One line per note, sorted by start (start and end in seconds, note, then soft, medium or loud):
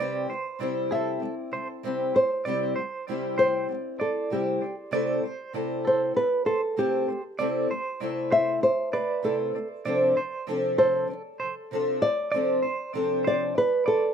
0.00 0.27 C3 medium
0.00 0.29 G3 medium
0.00 0.29 C4 medium
0.00 0.30 E4 medium
0.00 0.30 G4 medium
0.00 0.28 D5 medium
0.28 0.53 C3 soft
0.28 0.55 G3 medium
0.28 0.59 C5 medium
0.59 1.19 C3 medium
0.59 1.21 G3 medium
0.59 1.84 C4 medium
0.59 1.84 E4 medium
0.59 1.22 G4 medium
0.91 1.34 A4 medium
0.91 1.20 E5 medium
1.20 1.45 C3 medium
1.20 1.47 G3 medium
1.51 1.76 C3 soft
1.51 1.78 G3 medium
1.51 1.67 C5 medium
1.83 2.13 C3 medium
1.83 2.14 G3 medium
1.83 2.14 C4 medium
1.83 2.15 E4 medium
1.83 2.15 G4 medium
2.14 2.39 C3 soft
2.14 2.40 G3 soft
2.14 2.44 C5 medium
2.45 2.75 C3 medium
2.45 2.76 G3 medium
2.45 2.76 C4 medium
2.45 2.77 E4 medium
2.45 2.77 G4 medium
2.45 2.74 D5 medium
2.76 3.00 C3 soft
2.76 3.02 G3 medium
2.76 3.05 C5 medium
3.08 3.68 C3 medium
3.08 3.69 G3 medium
3.08 4.31 C4 medium
3.08 4.31 E4 medium
3.08 3.70 G4 medium
3.38 3.67 C5 medium
3.38 3.96 C5 loud
3.69 3.93 C3 medium
3.69 3.95 G3 medium
4.00 4.24 C3 soft
4.00 4.25 G3 soft
4.00 4.32 A4 medium
4.00 4.43 D5 medium
4.30 4.60 C3 medium
4.30 4.61 G3 medium
4.30 4.61 C4 medium
4.30 4.62 E4 medium
4.30 4.62 G4 medium
4.30 4.74 G4 medium
4.61 4.85 C3 soft
4.61 4.87 G3 soft
4.91 5.21 C3 medium
4.91 5.23 A3 medium
4.91 5.23 C4 medium
4.91 5.23 E4 medium
4.91 5.23 A4 medium
4.91 5.23 D5 medium
5.22 5.47 C3 soft
5.22 5.49 A3 medium
5.22 5.52 C5 medium
5.53 6.13 C3 medium
5.53 6.17 A3 medium
5.53 6.15 C4 medium
5.53 6.16 E4 medium
5.53 6.78 A4 medium
5.85 6.28 A4 medium
5.85 6.16 C5 medium
6.14 6.39 C3 medium
6.14 6.41 A3 medium
6.14 6.46 B4 medium
6.45 6.70 C3 soft
6.45 6.72 A3 soft
6.45 6.78 A4 medium
6.45 6.61 C5 medium
6.76 7.05 C3 medium
6.76 7.08 A3 medium
6.76 7.08 C4 medium
6.76 7.08 E4 medium
6.76 7.21 G4 medium
6.76 7.08 A4 medium
7.07 7.32 C3 soft
7.07 7.34 A3 soft
7.38 7.67 C3 medium
7.38 7.70 A3 medium
7.38 7.70 C4 medium
7.38 7.70 E4 medium
7.38 7.70 A4 loud
7.38 7.68 D5 medium
7.69 7.94 C3 soft
7.69 7.95 A3 medium
7.69 7.99 C5 medium
8.00 8.60 C3 medium
8.00 8.63 A3 medium
8.00 8.62 C4 medium
8.00 8.62 E4 medium
8.00 9.25 A4 medium
8.32 8.61 C5 medium
8.32 8.60 E5 medium
8.61 8.86 C3 medium
8.61 8.88 A3 medium
8.61 8.93 C5 medium
8.92 9.17 C3 soft
8.92 9.18 A3 soft
8.92 9.25 B4 medium
8.92 9.36 D5 medium
9.22 9.52 C3 medium
9.22 9.54 A3 medium
9.22 9.54 C4 medium
9.22 9.55 E4 medium
9.22 9.67 A4 medium
9.22 9.55 A4 medium
9.54 9.79 C3 soft
9.54 9.80 A3 medium
9.85 10.14 C3 medium
9.85 10.16 F3 medium
9.85 10.16 C4 medium
9.85 10.16 D4 medium
9.85 10.17 A4 medium
9.85 10.15 D5 medium
10.17 10.42 F3 medium
10.17 10.46 C5 medium
10.47 11.07 C3 medium
10.47 11.09 F3 medium
10.47 11.09 C4 medium
10.47 11.11 D4 medium
10.47 11.73 A4 loud
10.78 11.22 A4 medium
10.78 11.07 C5 medium
11.08 11.33 C3 medium
11.08 11.34 F3 medium
11.40 11.64 C3 soft
11.40 11.66 F3 medium
11.40 11.54 C5 medium
11.71 12.01 C3 medium
11.71 12.02 F3 medium
11.71 12.02 C4 medium
11.71 12.02 D4 medium
11.71 12.02 A4 medium
12.02 12.26 C3 soft
12.02 12.27 F3 soft
12.02 12.30 D5 medium
12.32 12.62 C3 medium
12.32 12.63 F3 medium
12.32 12.63 C4 medium
12.32 12.64 D4 medium
12.32 12.64 A4 medium
12.32 12.61 D5 medium
12.63 12.87 C3 soft
12.63 12.88 F3 medium
12.63 12.92 C5 medium
12.94 13.54 C3 medium
12.94 13.55 F3 medium
12.94 13.55 C4 medium
12.94 13.58 D4 medium
12.94 14.14 A4 medium
13.24 13.53 C5 medium
13.24 13.54 D5 medium
13.55 13.80 C3 medium
13.55 13.81 F3 medium
13.55 13.85 B4 medium
13.86 14.10 C3 soft
13.86 14.12 F3 soft
13.86 14.14 A4 medium
13.86 14.14 D5 medium